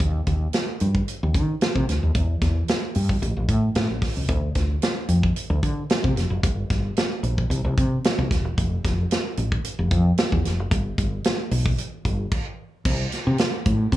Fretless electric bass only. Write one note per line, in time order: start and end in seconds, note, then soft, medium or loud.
0.00 0.20 D#2 medium
0.27 0.46 D#2 medium
0.81 1.01 G2 medium
1.23 1.36 D#2 medium
1.35 1.54 D#3 medium
1.75 1.84 C3 medium
1.89 1.99 D2 medium
2.03 2.12 D#2 medium
2.15 2.35 E2 medium
2.42 2.61 E2 medium
2.96 3.15 G2 medium
3.22 3.33 A1 loud
3.37 3.45 A1 medium
3.49 3.68 A2 loud
3.76 3.86 A2 loud
3.90 3.99 A1 medium
4.17 4.26 C#2 medium
4.29 4.48 D2 medium
4.55 4.75 D2 medium
5.09 5.28 F2 medium
5.50 5.59 D2 loud
5.63 5.82 D3 loud
6.04 6.13 C3 medium
6.16 6.27 F1 medium
6.30 6.39 F#1 medium
6.44 6.63 G1 medium
6.70 6.90 G1 medium
7.23 7.43 A#1 medium
7.50 7.61 C2 loud
7.64 7.74 C2 loud
7.78 7.97 C3 medium
8.18 8.27 C2 loud
8.31 8.45 D#1 medium
8.45 8.54 E1 medium
8.57 8.77 F1 medium
8.84 9.04 F1 loud
9.38 9.57 A1 medium
9.79 9.88 F1 medium
9.91 10.11 F2 medium
10.32 10.42 E2 medium
10.45 10.60 F1 medium
10.60 10.69 F#1 medium
10.71 10.91 G1 medium
10.98 11.18 G1 medium
11.51 11.71 B1 medium
12.05 12.25 G1 loud
12.85 13.05 C2 loud
13.27 13.36 C3 loud
13.66 13.85 A2 medium
13.92 13.97 C3 medium